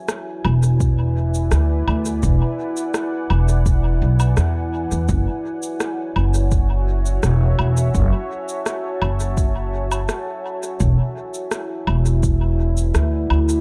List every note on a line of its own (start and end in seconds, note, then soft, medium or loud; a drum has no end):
0.00 6.57 E4 medium
0.00 1.66 F#4 medium
0.00 6.07 B4 medium
0.00 5.09 D5 medium
0.00 0.85 E5 medium
0.00 13.61 G#5 medium
0.08 cross-stick medium
0.08 cabasa soft
0.45 1.49 E1 medium
0.45 low woodblock medium
0.63 cabasa medium
0.80 kick loud
0.80 cabasa soft
1.06 7.13 F#5 medium
1.34 cabasa medium
1.51 1.83 D2 medium
1.51 cross-stick medium
1.51 cabasa soft
1.88 2.19 D2 medium
1.88 low woodblock medium
2.05 cabasa medium
2.23 2.39 E1 loud
2.23 kick loud
2.23 cabasa soft
2.77 cabasa medium
2.94 cross-stick medium
2.94 cabasa soft
3.30 4.01 E1 medium
3.30 low woodblock medium
3.48 cabasa medium
3.66 kick loud
3.66 cabasa soft
4.02 4.33 B1 medium
4.20 cabasa medium
4.20 low woodblock medium
4.37 4.88 E2 medium
4.37 cross-stick medium
4.37 cabasa soft
4.91 5.07 E2 medium
4.91 cabasa medium
5.09 5.25 F#1 loud
5.09 12.93 F#4 medium
5.09 kick loud
5.09 cabasa soft
5.22 10.81 C#5 medium
5.63 13.09 E5 medium
5.63 cabasa soft
5.80 cross-stick medium
5.80 cabasa soft
6.16 7.20 F#1 medium
6.16 low woodblock medium
6.34 cabasa soft
6.51 kick loud
6.51 cabasa soft
7.06 cabasa soft
7.23 7.55 E1 medium
7.23 cross-stick medium
7.23 cabasa soft
7.59 7.91 E1 medium
7.59 low woodblock medium
7.66 10.80 A5 medium
7.77 cabasa medium
7.95 8.11 F#1 loud
7.95 kick loud
7.95 cabasa soft
8.49 cabasa medium
8.66 cross-stick medium
8.66 cabasa soft
9.02 10.06 F#1 medium
9.02 low woodblock medium
9.20 cabasa soft
9.37 kick loud
9.37 cabasa soft
9.92 cabasa soft
9.92 low woodblock medium
10.09 cross-stick medium
10.09 cabasa soft
10.63 cabasa medium
10.80 10.96 E1 loud
10.80 13.61 E4 medium
10.80 kick loud
10.80 cabasa soft
11.34 cabasa soft
11.51 cross-stick medium
11.51 cabasa soft
11.56 13.61 B4 medium
11.87 12.91 E1 medium
11.87 13.61 D5 medium
11.87 low woodblock medium
12.06 cabasa soft
12.23 kick loud
12.23 cabasa soft
12.38 13.61 F#5 medium
12.77 cabasa soft
12.94 13.26 D2 medium
12.94 cross-stick medium
12.94 cabasa soft
13.30 13.61 D2 medium
13.30 low woodblock medium
13.49 cabasa medium